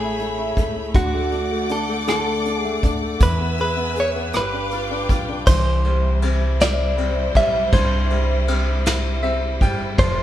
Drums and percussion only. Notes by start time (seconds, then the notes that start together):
0.19 closed hi-hat
0.57 kick, closed hi-hat
0.95 kick, closed hi-hat
1.32 closed hi-hat
1.69 closed hi-hat
2.08 cross-stick, closed hi-hat
2.45 closed hi-hat
2.83 kick, closed hi-hat
3.20 kick, closed hi-hat
3.58 closed hi-hat
3.96 closed hi-hat
4.33 cross-stick, closed hi-hat
4.71 closed hi-hat
5.09 kick, closed hi-hat
5.46 kick, crash
5.84 ride
6.22 ride
6.60 snare, ride
6.98 ride
7.35 kick, ride
7.73 kick, ride
8.10 ride
8.48 ride
8.86 snare, ride
9.24 ride
9.61 kick, ride
9.99 kick, ride